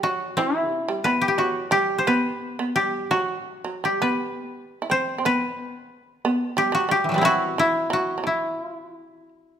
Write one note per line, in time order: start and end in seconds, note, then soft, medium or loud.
0.00 0.35 F#3 medium
0.00 0.36 E4 medium
0.00 1.27 F#4 medium
0.37 0.69 E3 medium
0.37 2.63 E4 medium
0.69 0.84 C3 medium
0.88 1.03 G3 medium
1.04 1.36 B3 medium
1.04 2.04 B4 medium
1.21 1.28 G4 medium
1.28 1.44 G4 medium
1.38 1.69 F#3 medium
1.38 1.78 F#4 medium
1.71 2.03 G3 medium
1.71 2.75 G4 medium
1.98 2.13 C5 medium
2.07 2.54 B3 medium
2.07 3.85 B4 medium
2.59 2.74 B3 medium
2.76 3.08 G3 medium
2.76 3.17 G4 medium
3.11 3.61 F#3 medium
3.11 3.91 F#4 medium
3.64 3.81 F#3 medium
3.84 4.00 G3 medium
3.84 5.89 G4 medium
4.02 4.54 B3 medium
4.02 4.97 B4 medium
4.54 4.79 G3 medium
4.82 4.89 E4 soft
4.90 5.16 C4 medium
4.90 5.32 C5 medium
5.18 5.25 C4 soft
5.25 6.21 B3 medium
5.25 7.03 B4 medium
6.25 6.55 B3 medium
6.57 6.72 G3 medium
6.57 6.81 G4 medium
6.72 6.88 F#3 medium
6.72 6.97 F#4 medium
6.89 7.15 G3 medium
6.89 7.31 G4 medium
7.04 7.31 E3 soft
7.09 7.24 F#3 soft
7.09 7.31 G3 soft
7.14 7.22 G3 medium
7.14 9.60 B3 soft
7.14 9.60 C4 soft
7.21 7.54 F#3 medium
7.21 7.59 E4 medium
7.21 7.93 F#4 medium
7.58 7.89 E3 medium
7.58 8.26 E4 medium
7.90 8.16 F#3 medium
7.90 9.60 F#4 medium
8.18 8.25 F#3 soft
8.24 9.28 E3 medium
8.24 9.60 E4 medium